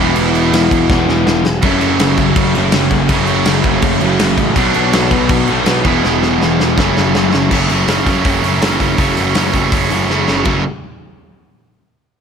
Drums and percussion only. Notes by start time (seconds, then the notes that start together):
0.16 crash
0.35 crash
0.53 snare, crash
0.71 kick, crash
0.90 kick, snare
1.09 snare
1.27 snare
1.45 snare
1.62 kick, crash
1.81 crash
1.99 snare, crash
2.17 kick, crash
2.36 kick, crash
2.55 crash
2.72 snare, crash
2.91 kick, crash
3.09 kick, crash
3.27 crash
3.45 snare, crash
3.64 kick, crash
3.82 kick, crash
4.01 crash
4.19 snare, crash
4.38 kick, crash
4.56 kick, crash
4.74 crash
4.93 snare, crash
5.11 kick, crash
5.29 kick, crash
5.48 crash
5.66 snare, crash
5.85 kick, crash
6.04 snare
6.23 snare
6.42 snare
6.60 snare
6.78 kick, snare
6.97 snare
7.15 snare
7.33 snare
7.51 kick, crash
7.70 open hi-hat
7.88 snare, open hi-hat
8.06 kick, open hi-hat
8.25 kick, open hi-hat
8.44 open hi-hat
8.62 snare, open hi-hat
8.80 kick, open hi-hat
8.98 kick, open hi-hat
9.17 open hi-hat
9.35 snare, open hi-hat
9.53 kick, open hi-hat
9.72 kick, open hi-hat
9.90 open hi-hat
10.10 snare
10.28 snare
10.45 kick, crash